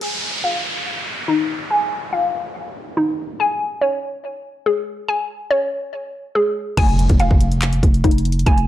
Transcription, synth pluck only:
0.01 G#5
0.44 F5
1.28 D#4
1.71 G#5
2.13 F5
2.97 D#4
3.40 G#5
3.81 C#5
4.66 G#4
5.08 G#5
5.51 C#5
6.35 G#4
6.77 G#5
7.20 F5
8.04 D#4
8.47 G#5

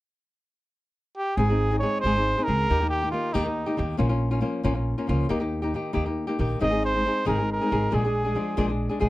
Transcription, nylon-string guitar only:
1.37 G#3 C4 D#4 G#4
1.50 C4 D#4 G#4
1.71 C4 D#4 G#4
1.82 G#3 C4 D#4 G#4
2.05 G#3 C4 D#4 G#4
2.16 C4 D#4 G#4
2.37 C4 D#4 G#4
2.47 G#3 C4 D#4 G#4
2.70 D#3 A#3 D#4 G4
2.80 A#3 D#4 G4
3.02 A#3 D#4 G4
3.13 D#3 A#3 D#4 G4
3.34 D#3 A#3 D#4 G4
3.45 A#3 D#4 G4
3.66 A#3 D#4 G4
3.77 D#3 A#3 D#4 G4
3.97 A#2 F3 A#3 C#4 F4
4.09 A#3 C#4 F4
4.31 A#3 C#4 F4
4.41 F3 A#3 C#4 F4
4.63 A#2 F3 A#3 C#4 F4
4.75 A#3 C#4 F4
4.98 A#3 C#4 F4
5.07 F3 A#3 C#4 F4
5.29 D#3 A#3 D#4 G4
5.40 A#3 D#4 G4
5.62 A#3 D#4 G4
5.74 D#3 A#3 D#4 G4
5.93 D#3 A#3 D#4 G4
6.06 A#3 D#4 G4
6.27 A#3 D#4 G4
6.39 D#3 A#3 D#4 G4
6.60 G#2 D#3 G#3 C4 D#4 G#4
6.71 G#3 C4 D#4 G#4
6.95 G#3 C4 D#4 G#4
7.05 G#3 C4 D#4 G#4
7.25 G#2 D#3 G#3 C4 D#4 G#4
7.38 G#3 C4 D#4 G#4
7.61 G#3 C4 D#4 G#4
7.70 G#3 C4 D#4 G#4
7.91 A#2 F3 G#3 D4 G#4
8.04 G#3 D4 G#4
8.25 G#3 D4 G#4
8.35 F3 G#3 D4 G#4
8.57 A#2 F3 G#3 D4 G#4
8.68 G#3 D4 G#4
8.89 G#3 D4 G#4
9.00 F3 G#3 D4 G#4

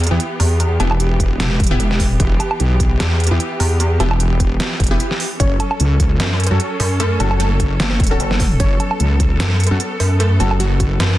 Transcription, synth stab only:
0.11 B3 E4 G4
0.80 B3 E4 G4
1.71 B3 E4 G4
3.31 B3 E4 G4
4.00 B3 E4 G4
4.91 B3 E4 G4
6.51 C#4 F#4 A4
7.20 C#4 F#4 A4
8.11 C#4 F#4 A4
9.71 C#4 F#4 A4
10.40 C#4 F#4 A4

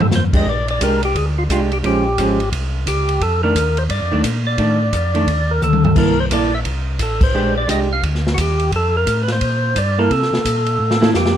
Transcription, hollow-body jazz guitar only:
0.33 G#3 D4 G4
0.81 G#3 D4 G4
1.50 G#3 D4 G4
1.83 F3 G#3 C#4
2.19 F3 G#3 C#4
3.43 D#3 A3 D4
4.12 D#3 A3 D4
4.58 D#3 A3 D4
5.14 D#3 A3 D4
5.96 A#3 E4 A4
6.31 A#3 E4 A4
7.34 G#3 D4 G4
7.67 G#3 D4 G4
9.98 A#3 E4 A4
11.01 A#3 E4 A4

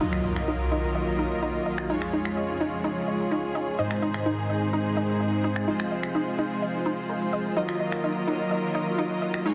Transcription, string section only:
0.01 D#3 F#3 A#3 F4 A#4
1.90 F2 C#3 F3 G#3 G#4
3.79 C3 D#3 G#3 D#4
5.68 F3 F4
7.57 D#3 F#3 A#3 A#4
9.46 F2 C#3 F3 G#3 F4 G#4

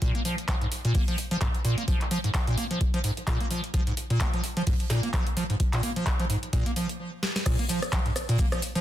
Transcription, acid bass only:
0.02 A#2
0.15 A#3
0.25 F3
0.48 F3
0.62 G#2
0.85 A#2
0.95 A#3
1.08 F3
1.31 F3
1.41 G#2
1.65 A#2
1.78 A#3
1.88 F3
2.11 F3
2.24 G#2
2.47 A#2
2.58 A#3
2.71 F3
2.94 F3
3.04 G#2
3.27 A#2
3.41 A#3
3.51 F3
3.74 F3
3.87 G#2
4.10 A#2
4.20 A#3
4.34 F3
4.57 F3
4.67 G#2
4.90 A#2
5.03 A#3
5.13 F3
5.37 F3
5.50 G#2
5.73 A#2
5.83 A#3
5.96 F3
6.20 F3
6.30 G#2
6.53 A#2
6.66 A#3
6.76 F3
7.46 A#2
7.59 A#3
7.69 F3
7.93 F3
8.06 G#2
8.29 A#2
8.39 A#3
8.52 F3
8.75 F3

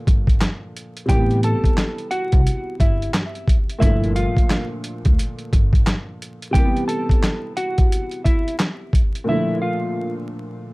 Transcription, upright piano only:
Already playing: A#2 D3 F3 A3
1.06 C3 E3
1.10 G3 A#3
1.19 B3
3.79 A#2 D3
3.83 F3 A3
6.51 C3 E3
6.56 G3 A#3
6.65 B3
9.24 A#2 D3
9.29 F3 A3

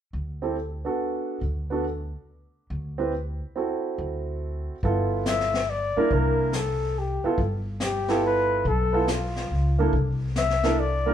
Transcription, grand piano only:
0.42 C4 E4 G4 A4
0.85 B3 D4 F#4 A4
1.70 B3 D4 F#4 A4
2.98 C4 E4 G4 B4
3.56 C4 E4 F#4 A4
4.84 B3 E4 F4 A4
5.97 A#3 D4 E4 A#4
7.24 B3 E4 F4 A4
8.09 B3 E4 F4 A4
8.93 B3 E4 F4 A4
9.79 A#3 D4 E4 A4
10.64 A#3 D4 E4 A4
11.06 A#3 D4 E4 A#4

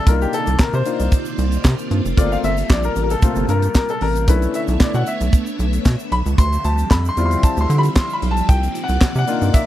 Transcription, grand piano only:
0.06 A#3 D4 D#4 F4 A#4
0.22 G4
0.34 A4
0.60 A#4
0.75 C5
0.86 A#3 D4 D#4 F4
2.17 A3 A#3 C4 F4 D5
2.32 F5
2.44 E5
2.71 D5
2.85 A#4
3.03 A#4
3.11 A4
3.23 A3 A#3 C4 F4
3.50 A#4
3.76 A#4
3.90 A4
4.02 A#4
4.28 A3 C#4 D4 E4 B4
4.55 E5
4.81 D5
4.95 F#5
5.07 E5
6.12 B5
6.38 C6
6.65 A5
6.91 B5
7.09 C6
7.17 G3 C4 E4 F4
7.26 C6
7.43 A5
7.61 C6
7.78 B5
7.96 C6
8.13 B5
8.31 A5
8.49 G5
8.84 F#5
9.18 F#5
9.27 A#3 D4 D#4 F4
9.54 E5

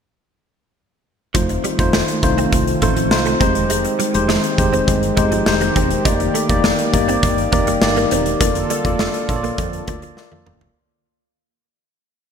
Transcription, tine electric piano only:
1.34 A3 D#4 F4 C5
1.78 A3 D#4 F4 C5
2.22 A3 D#4 F4 C5
2.82 A3 D#4 F4 C5
3.11 A3 D#4 F4 C5
3.40 G#3 D#4 G4 C5
4.14 G#3 D#4 G4 C5
4.58 G#3 D#4 G4 C5
5.17 G#3 D#4 G4 C5
5.46 G#3 D#4 G4 C5
6.05 A#3 D#4 G4 D5
6.49 A#3 D#4 G4 D5
6.93 A#3 D#4 G4 D5
7.52 A#3 D#4 G4 D5
7.81 A#3 D#4 G4 D5
8.40 A#3 F4 A4 D5
8.85 A#3 F4 A4 D5
9.29 A#3 F4 A4 C#5
9.36 D5
9.87 A#3 F4 A4 D5
10.17 A#3 F4 A4 D5

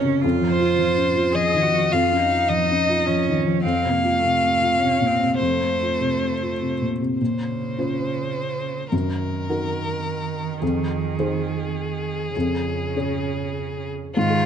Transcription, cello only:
Already playing: C#4
0.22 F4
1.33 G#4
1.62 F#4
1.92 F4
2.20 D#4
3.05 C#4
3.63 C4
3.91 A#3
4.18 A3
4.78 C#4
5.07 C4
5.38 A3
7.21 C#3
8.91 D#3
12.35 C#3
14.16 D#3

